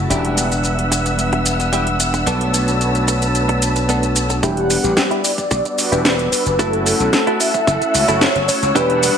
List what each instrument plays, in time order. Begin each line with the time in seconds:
0.10 slap bass E1, analog synth pad G3 B3 D4 F#5, string section G3 E5 E6, clean electric guitar D4 E4 G4, closed hi-hat, shaker, maracas
0.25 closed hi-hat
0.37 closed hi-hat, maracas, shaker
0.52 closed hi-hat, shaker, maracas
0.63 closed hi-hat, maracas, shaker
0.79 closed hi-hat
0.92 muted clean electric guitar stroke, closed hi-hat, shaker, maracas
1.05 muted clean electric guitar stroke, closed hi-hat, maracas, shaker
1.19 closed hi-hat, maracas, shaker
1.33 muted clean electric guitar stroke, closed hi-hat
1.46 muted clean electric guitar stroke, closed hi-hat, shaker, maracas
1.59 muted clean electric guitar stroke, closed hi-hat, shaker, maracas
1.73 clean electric guitar D4 E4 G4, closed hi-hat, shaker, maracas
1.87 closed hi-hat
2.00 muted clean electric guitar stroke, closed hi-hat, maracas, shaker
2.14 muted clean electric guitar stroke, closed hi-hat, maracas, shaker
2.26 slap bass B1, analog synth pad A3 D4 F#4 C#5, clean electric guitar B3 D4 A4, string section B4 A5, closed hi-hat, maracas, shaker
2.41 closed hi-hat
2.54 closed hi-hat, maracas, shaker
2.68 closed hi-hat, maracas, shaker
2.81 closed hi-hat, shaker, maracas
2.95 closed hi-hat, shaker
3.08 muted clean electric guitar stroke, closed hi-hat, maracas, shaker
3.22 muted clean electric guitar stroke, closed hi-hat, maracas, shaker
3.35 closed hi-hat, shaker, maracas
3.49 muted clean electric guitar stroke, closed hi-hat
3.62 muted clean electric guitar stroke, closed hi-hat, maracas, shaker
3.76 muted clean electric guitar stroke, closed hi-hat, maracas, shaker
3.89 clean electric guitar B3 D4 A4, closed hi-hat, maracas, shaker
4.03 closed hi-hat, shaker
4.16 muted clean electric guitar stroke, closed hi-hat, maracas, shaker
4.29 muted clean electric guitar stroke, closed hi-hat, maracas, shaker
4.42 slap bass E1, analog synth pad G3 B3 D4 F#5, clean electric guitar D4 E4 G4, analog synth lead G4, string section G4 D5 E6, kick, closed hi-hat, shaker, maracas
4.57 closed hi-hat
4.70 open hi-hat, maracas, shaker
4.83 slap bass A1, analog synth pad G3 B3 D4 F#4, analog synth lead G4, closed hi-hat, shaker, maracas
4.97 kick, snare, closed hi-hat, maracas, shaker
5.11 clean electric guitar D4 E4 G4, closed hi-hat
5.23 analog synth pad G3 B3 D4 F#4, analog synth lead D5, open hi-hat, maracas, shaker
5.38 kick, closed hi-hat, shaker, maracas
5.51 slap bass B1, muted clean electric guitar stroke, kick, closed hi-hat, maracas, shaker
5.64 analog synth pad G3 B3 D4 F#4, muted clean electric guitar stroke, closed hi-hat, shaker
5.78 open hi-hat, maracas, shaker
5.91 slap bass E1, analog synth pad G3 B3 D4 F#4, clean electric guitar D4 E4 G4, analog synth lead B4, closed hi-hat, maracas, shaker
6.05 kick, snare, closed hi-hat, maracas, shaker
6.19 closed hi-hat
6.32 analog synth pad G3 B3 D4 F#4, analog synth lead B4, muted clean electric guitar stroke, muted slap bass stroke, open hi-hat, maracas, shaker
6.46 slap bass F#1, closed hi-hat, maracas, shaker
6.59 analog synth pad A3 C#4 E4 F#4, clean electric guitar E4 F#4 A4, analog synth lead A4, string section A4 F#5, kick, closed hi-hat, maracas, shaker
6.73 closed hi-hat
6.86 open hi-hat, shaker, maracas
6.99 slap bass B1, analog synth pad A3 C#4 E4 F#4, analog synth lead A4, closed hi-hat, maracas, shaker
7.13 kick, snare, closed hi-hat, maracas, shaker
7.27 clean electric guitar E4 F#4 A4, closed hi-hat
7.40 analog synth pad A3 C#4 E4 F#4, analog synth lead E5, open hi-hat, maracas, shaker
7.54 kick, maracas, shaker
7.67 slap bass F#1, muted clean electric guitar stroke, kick, closed hi-hat, shaker, maracas
7.81 analog synth pad A3 C#4 E4 F#4, muted clean electric guitar stroke, muted slap bass stroke, closed hi-hat, shaker
7.94 slap bass C#2, open hi-hat, maracas, shaker
8.08 slap bass F#1, analog synth pad A3 C#4 E4 F#4, clean electric guitar E4 F#4 A4, analog synth lead C#5, maracas, shaker
8.21 kick, snare, closed hi-hat, maracas, shaker
8.35 slap bass F#1, closed hi-hat
8.48 analog synth pad A3 C#4 E4 F#4, analog synth lead C#5, muted clean electric guitar stroke, muted slap bass stroke, open hi-hat, maracas, shaker
8.63 slap bass C#2, closed hi-hat, maracas, shaker
8.75 slap bass E1, analog synth pad G3 B3 D4 F#5, clean electric guitar D4 E4 G4, string section D4 G4, analog synth lead B4, kick, closed hi-hat, maracas, shaker
8.90 closed hi-hat
9.03 open hi-hat, maracas, shaker